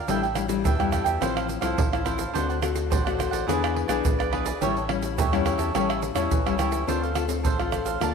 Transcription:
0.08 sub bass A1, nylon-string guitar A2 G3 D4 E4, cavaquinho D4 A4 E5 G5, pandeiro, shaker, surdo
0.22 cavaquinho A4 E5 G5, pandeiro, shaker
0.35 nylon-string guitar G3 D4 E4, muted cavaquinho stroke, pandeiro, tamborim, shaker
0.48 nylon-string guitar G3 D4 E4, pandeiro, shaker
0.64 sub bass E2, nylon-string guitar E3, cavaquinho D4 A4 E5 G5, pandeiro, shaker, surdo
0.79 nylon-string guitar G3 D4 E4, cavaquinho A4 E5 G5, pandeiro, tamborim, shaker
0.91 cavaquinho D4 A4 E5 G5, pandeiro, tamborim, shaker, surdo
1.04 sub bass E2, cavaquinho A4 E5 G5, pandeiro, shaker
1.21 sub bass A1, nylon-string guitar A2 F3 C4 E4, cavaquinho E4 A4 C5 F5, pandeiro, tamborim, shaker, surdo
1.35 cavaquinho A4 C5 F5, pandeiro, tamborim, shaker
1.48 muted cavaquinho stroke, pandeiro, shaker
1.61 sub bass C2, nylon-string guitar F3 C4 E4, cavaquinho A4 C5 F5, pandeiro, tamborim, shaker
1.78 sub bass A1, nylon-string guitar A2, pandeiro, shaker, surdo
1.92 nylon-string guitar F3 C4 E4, cavaquinho A4 C5 F5, pandeiro, tamborim, shaker
2.05 nylon-string guitar F3 C4 E4, cavaquinho E4 A4 C5 F5, pandeiro, tamborim, shaker
2.18 cavaquinho A4 C5 F5, pandeiro, shaker
2.33 sub bass D2, nylon-string guitar D3 C4 F#4 A4, cavaquinho D4 C5 D5 F#5, pandeiro, shaker, surdo
2.49 cavaquinho C5 D5 F#5, pandeiro, shaker
2.61 nylon-string guitar C4 F#4 A4, muted cavaquinho stroke, pandeiro, tamborim, shaker
2.76 pandeiro, shaker
2.90 sub bass A1, nylon-string guitar A2, cavaquinho D4 C5 D5 F#5, pandeiro, shaker, surdo
3.05 nylon-string guitar C4 F#4 A4, cavaquinho C5 D5 F#5, pandeiro, tamborim, shaker
3.17 cavaquinho D4 C5 D5 F#5, pandeiro, tamborim, shaker
3.31 sub bass A1, cavaquinho C5 D5 F#5, pandeiro, shaker
3.47 sub bass E2, nylon-string guitar E3 B3 D4 G#4, cavaquinho E4 G#4 B4 D5, pandeiro, tamborim, shaker, surdo
3.62 cavaquinho G#4 B4 D5, pandeiro, tamborim, shaker
3.74 muted cavaquinho stroke, pandeiro
3.88 sub bass B1, nylon-string guitar B3 D4 G#4, cavaquinho G#4 B4 D5, pandeiro, tamborim, shaker
4.04 sub bass A#1, pandeiro, shaker, surdo
4.19 cavaquinho G#4 B4 D5, pandeiro, tamborim, shaker
4.31 nylon-string guitar B3 D4 G#4, cavaquinho E4 G#4 B4 D5, pandeiro, tamborim
4.45 cavaquinho G#4 B4 D5, pandeiro, shaker
4.61 sub bass A1, nylon-string guitar A2 G3 C#4 E4, cavaquinho G4 A4 C#5 E5, pandeiro, shaker, surdo
4.76 cavaquinho A4 C#5 E5, pandeiro, shaker
4.88 nylon-string guitar G3 C#4 E4, muted cavaquinho stroke, pandeiro, tamborim
5.02 pandeiro, shaker
5.17 sub bass E2, nylon-string guitar E3, cavaquinho G4 A4 C#5 E5, pandeiro, shaker, surdo
5.32 nylon-string guitar G3 C#4 E4, cavaquinho A4 C#5 E5, pandeiro, tamborim, shaker
5.45 cavaquinho G4 A4 C#5 E5, pandeiro, tamborim, shaker
5.58 sub bass E2, cavaquinho A4 C#5 E5, pandeiro, shaker
5.74 sub bass A1, nylon-string guitar A2 G3 C#4 E4, cavaquinho G4 A4 C#5 E5, pandeiro, tamborim, shaker, surdo
5.89 cavaquinho A4 C#5 E5, pandeiro, tamborim, shaker
6.02 muted cavaquinho stroke, pandeiro, shaker
6.15 sub bass E2, nylon-string guitar G3 C#4 E4, cavaquinho A4 C#5 E5, pandeiro, tamborim, shaker
6.30 sub bass A1, nylon-string guitar E3, pandeiro, shaker, surdo
6.46 nylon-string guitar G3 C#4 E4, cavaquinho A4 C#5 E5, pandeiro, tamborim, shaker
6.58 sub bass C#2, nylon-string guitar G3 C#4 E4, cavaquinho G4 A4 C#5 E5, pandeiro, tamborim, shaker
6.71 cavaquinho A4 C#5 E5, pandeiro, shaker
6.87 sub bass D2, nylon-string guitar D3 C4 F4 A4, cavaquinho D4 A4 C5 F5, pandeiro, shaker, surdo
7.03 cavaquinho A4 C5 F5, pandeiro, shaker
7.15 nylon-string guitar C4 F4 A4, muted cavaquinho stroke, pandeiro, tamborim, shaker
7.28 nylon-string guitar C4 F4 A4, pandeiro, shaker
7.44 sub bass A1, nylon-string guitar A2, cavaquinho D4 A4 C5 F5, pandeiro, shaker, surdo
7.59 nylon-string guitar C4 F4 A4, cavaquinho A4 C5 F5, pandeiro, tamborim, shaker
7.72 cavaquinho D4 A4 C5 F5, pandeiro, tamborim, shaker, surdo
7.84 sub bass A1, cavaquinho A4 C5 F5, pandeiro, shaker
8.00 sub bass D2, nylon-string guitar D3 A#3 F4 A4, cavaquinho A#4 D5 F5 A5, pandeiro, tamborim, shaker, surdo

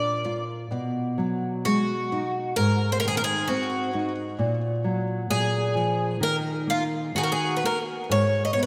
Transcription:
Already playing: nylon-string guitar A#2 D4, twelve-string acoustic guitar D5
0.25 nylon-string guitar F4
0.71 nylon-string guitar B2
1.18 nylon-string guitar F#3
1.65 nylon-string guitar G#3, twelve-string acoustic guitar F#4
2.12 nylon-string guitar D#4
2.56 nylon-string guitar G#2, twelve-string acoustic guitar A#4
2.92 twelve-string acoustic guitar C5
3.00 twelve-string acoustic guitar A#4
3.05 nylon-string guitar D#3, twelve-string acoustic guitar G#4
3.17 twelve-string acoustic guitar A#4
3.24 twelve-string acoustic guitar G#4
3.48 nylon-string guitar C4, twelve-string acoustic guitar F#4
3.95 nylon-string guitar D#4
4.39 nylon-string guitar A#2
4.84 nylon-string guitar F#3
5.30 nylon-string guitar A#2, twelve-string acoustic guitar G#4
5.75 nylon-string guitar F3
6.20 nylon-string guitar D#3, twelve-string acoustic guitar A#4
6.67 nylon-string guitar A#3, twelve-string acoustic guitar F4
7.15 nylon-string guitar D#3, twelve-string acoustic guitar F#4 G#4
7.23 twelve-string acoustic guitar A#4
7.32 twelve-string acoustic guitar G#4
7.56 twelve-string acoustic guitar B4
7.63 nylon-string guitar A#3, twelve-string acoustic guitar A#4
8.09 nylon-string guitar G#2, twelve-string acoustic guitar C#5
8.45 twelve-string acoustic guitar D#5
8.53 nylon-string guitar B3, twelve-string acoustic guitar C#5
8.63 twelve-string acoustic guitar B4

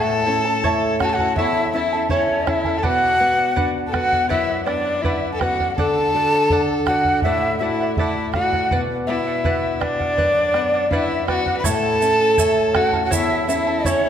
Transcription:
Already playing: nylon-string guitar A2, charango E4 A4 C#5 E5 A5, violin A4, quena A5
0.25 nylon-string guitar C#4, charango E4 A4 E5 A5
0.45 charango E4 A4 A5
0.64 nylon-string guitar E4, charango E4 A4 C#5 E5 A5, bombo low
1.00 nylon-string guitar C#4, charango E4 A4 E5 A5, violin F#4, quena F#5, bombo rim, bombo low
1.05 violin A4, quena A5
1.14 violin F#4, quena F#5
1.18 charango E4 A4 A5, bombo low
1.36 nylon-string guitar E2, violin E4, charango E4 A4 C#5 E5 A5, quena E5, bombo low
1.73 nylon-string guitar C#4, violin E4, charango E4 A4 E5 A5, quena E5
1.93 charango E4 A4 A5
2.09 violin C#4, nylon-string guitar E4, charango E4 A4 C#5 E5 A5, quena C#5, bombo low
2.47 nylon-string guitar C#4, violin E4, charango E4 A4 E5 A5, quena E5, bombo rim, bombo low
2.64 charango E4 A4 A5, bombo low
2.78 violin A4, quena A5
2.83 nylon-string guitar B2, violin F#4, charango B4 D5 F#5, quena F#5, bombo low
3.20 nylon-string guitar B3, charango B4 D5 F#5
3.37 charango D5 F#5
3.56 nylon-string guitar D4, charango B4 D5 F#5, bombo low
3.87 violin A4, quena A5
3.92 nylon-string guitar B3, violin F#4, charango B4 D5 F#5, quena F#5, bombo rim, bombo low
4.12 charango D5 F#5, bombo low
4.29 nylon-string guitar F#2, violin E4, charango B4 D5 F#5, quena E5, bombo low
4.65 nylon-string guitar B3, violin D4, charango B4 D5 F#5, quena D5, bombo rim
4.85 charango D5 F#5
5.02 nylon-string guitar D4, violin E4, charango B4 D5 F#5, quena E5, bombo low
5.32 violin A4, quena A5
5.39 nylon-string guitar B3, violin F#4, charango B4 D5 F#5, quena G5, bombo rim, bombo low
5.43 quena F#5
5.60 charango D5 F#5, bombo low
5.76 nylon-string guitar D3, violin A4, charango A4 D5 F#5, quena A5, bombo low
6.15 nylon-string guitar F#4, charango A4 D5 F#5
6.33 charango D5 F#5
6.50 nylon-string guitar A4, charango A4 D5 F#5, bombo low
6.86 violin F#4, nylon-string guitar F#4, charango A4 D5, quena F#5, bombo rim, bombo low
6.90 charango F#5
7.05 charango D5 F#5, bombo low
7.22 nylon-string guitar A2, violin E4, charango A4 D5 F#5, quena E5, bombo low
7.59 violin E4, nylon-string guitar F#4, charango A4 D5, quena E5
7.63 charango F#5
7.80 charango D5 F#5
7.97 violin E4, nylon-string guitar A4, charango A4 D5 F#5, quena E5, bombo low
8.32 violin F#4, nylon-string guitar F#4, charango A4 D5 F#5, quena F#5, bombo rim, bombo low
8.52 charango D5 F#5, bombo low
8.71 nylon-string guitar B2, charango B4 D5 F#5, bombo low
9.07 nylon-string guitar B3, violin E4, charango B4 D5 F#5, quena E5
9.27 charango D5 F#5
9.44 nylon-string guitar D4, charango B4 D5 F#5, bombo low
9.80 nylon-string guitar B3, violin D4, charango B4 D5 F#5, quena D5, bombo rim, bombo low
9.99 charango D5 F#5, bombo low
10.17 nylon-string guitar F#2, charango B4 D5 F#5, bombo low
10.54 nylon-string guitar B3, charango B4 D5 F#5, bombo rim
10.74 charango D5 F#5
10.91 nylon-string guitar D4, violin E4, charango B4 D5 F#5, quena F5, bombo low
10.95 quena E5
11.27 nylon-string guitar B3, violin F#4, charango B4 D5 F#5, quena G5, bombo rim, bombo low
11.34 quena F#5
11.46 charango D5 F#5, bombo low
11.57 violin B4, quena B5
11.64 nylon-string guitar A2, charango E4 A4 C#5 E5 A5, violin A4, quena A5, bombo low, shaker
12.00 nylon-string guitar C#4, charango E4 A4 E5 A5, shaker
12.20 charango E4 A4 A5
12.38 nylon-string guitar E4, charango E4 A4 C#5 E5 A5, bombo low, shaker
12.73 nylon-string guitar C#4, charango E4 A4 E5 A5, violin F#4, quena F#5, bombo rim, bombo low
12.93 charango E4 A4 A5, bombo low
13.05 violin F#4, quena F#5
13.11 nylon-string guitar E2, charango E4 A4 C#5 E5 A5, violin E4, quena E5, bombo low, shaker
13.48 nylon-string guitar C#4, charango E4 A4 E5 A5, violin E4, quena E5, shaker
13.67 charango E4 A4 A5
13.85 violin C#4, nylon-string guitar E4, charango E4 A4 C#5 E5 A5, quena C#5, bombo low, shaker

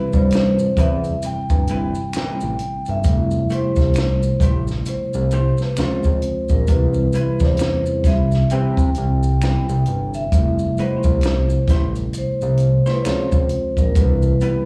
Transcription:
Already playing: tine electric piano C3 E3 G3 C4 E4, hollow-body jazz guitar G3 C4 E4 B4, vibraphone B4
0.13 analog synth bass G2, vibraphone C5, kick, maracas
0.31 finger snap, closed hi-hat, maracas
0.35 snare
0.59 maracas
0.77 analog synth bass E2, hollow-body jazz guitar G3 C4 E4 B4, vibraphone E5, kick, closed hi-hat, maracas
1.04 closed hi-hat, maracas
1.22 analog synth bass G1, vibraphone G5, muted hollow-body jazz guitar stroke, closed hi-hat, maracas
1.50 analog synth bass G1, kick, maracas
1.67 hollow-body jazz guitar G3 C4 E4 B4, closed hi-hat, maracas
1.95 maracas
2.13 analog synth bass A1, hollow-body jazz guitar G3 C4 E4 B4, vibraphone G5, finger snap, snare, closed hi-hat, maracas
2.41 analog synth bass A1, maracas
2.59 closed hi-hat
2.86 analog synth bass G1, vibraphone E5, closed hi-hat, maracas
3.01 tine electric piano C3 F3, kick, maracas
3.05 analog synth bass F1, tine electric piano G3 A3, closed hi-hat
3.11 tine electric piano D4
3.17 tine electric piano E4
3.31 maracas
3.50 hollow-body jazz guitar A3 E4 G4 C5, closed hi-hat, maracas
3.54 vibraphone C5
3.76 analog synth bass C2, kick, closed hi-hat, maracas
3.80 snare
3.94 finger snap, closed hi-hat, maracas
3.98 snare
4.23 maracas
4.40 analog synth bass A1, hollow-body jazz guitar A3 E4 G4 C5, kick, closed hi-hat, maracas
4.67 snare, maracas
4.86 analog synth bass C2, vibraphone C5, muted hollow-body jazz guitar stroke, closed hi-hat, maracas
5.14 analog synth bass C2, maracas
5.31 hollow-body jazz guitar A3 E4 G4 C5, closed hi-hat, maracas
5.58 snare, maracas
5.62 vibraphone B4
5.77 analog synth bass C#2, tine electric piano C#3 F3 G#3 C4, hollow-body jazz guitar G#3 C#4 F4 C5, vibraphone C5, finger snap, snare, closed hi-hat, maracas
5.82 tine electric piano F4
6.03 analog synth bass C#2, kick, maracas
6.22 closed hi-hat
6.49 analog synth bass A#1, vibraphone A#4, kick, maracas
6.66 analog synth bass C2, tine electric piano C3 E3, kick, closed hi-hat, maracas
6.70 tine electric piano G3 C4, vibraphone B4
6.75 tine electric piano E4
6.94 maracas
7.13 hollow-body jazz guitar G3 C4 E4 B4, closed hi-hat, maracas
7.40 analog synth bass E2, vibraphone C5, kick, snare, maracas
7.57 finger snap, closed hi-hat, maracas
7.61 snare
7.86 maracas
8.04 analog synth bass C2, hollow-body jazz guitar G3 C4 E4 B4, vibraphone E5, kick, snare, closed hi-hat, maracas
8.31 snare, maracas
8.50 analog synth bass C3, hollow-body jazz guitar G3 C4 E4 B4, vibraphone G5, closed hi-hat, maracas
8.77 kick, maracas
8.95 analog synth bass C2, closed hi-hat, maracas
9.23 maracas
9.42 hollow-body jazz guitar G3 C4 E4 B4, vibraphone G5, finger snap, snare, closed hi-hat, maracas
9.69 analog synth bass C2, maracas
9.86 analog synth bass G1, closed hi-hat
10.14 vibraphone E5, closed hi-hat, maracas
10.29 analog synth bass F1, tine electric piano C3 F3, kick, closed hi-hat, maracas
10.34 tine electric piano G3 A3
10.39 tine electric piano E4
10.59 maracas
10.78 hollow-body jazz guitar G#3 D#4 F#4 B4, vibraphone C5, closed hi-hat, maracas
10.96 hollow-body jazz guitar A3 E4 G4 C5
11.03 analog synth bass C2, kick, maracas
11.21 finger snap, closed hi-hat, maracas
11.26 snare
11.50 maracas
11.68 analog synth bass A1, hollow-body jazz guitar A3 E4 G4 C5, kick, closed hi-hat, maracas
11.72 snare
11.95 closed hi-hat, maracas
12.13 analog synth bass C2, closed hi-hat, maracas
12.18 vibraphone C5
12.41 analog synth bass C2, maracas
12.57 closed hi-hat, maracas
12.86 hollow-body jazz guitar A3 E4 G4 C5, snare, maracas
12.90 vibraphone B4
13.01 tine electric piano C#3 F3, hollow-body jazz guitar G#3, vibraphone C#5, finger snap, maracas
13.05 analog synth bass C#2, tine electric piano G#3 C4 F4, hollow-body jazz guitar C#4 F4 C5, vibraphone C5, snare, closed hi-hat
13.32 analog synth bass C#2, kick, maracas
13.49 closed hi-hat
13.77 analog synth bass A#1, vibraphone A#4, kick, closed hi-hat, maracas
13.92 tine electric piano C3 E3, kick, closed hi-hat, maracas
13.96 analog synth bass C2, tine electric piano B2 G3, vibraphone B4
14.02 tine electric piano D4
14.08 tine electric piano E4
14.22 maracas
14.41 hollow-body jazz guitar B3 E4 G4 B4, closed hi-hat, maracas

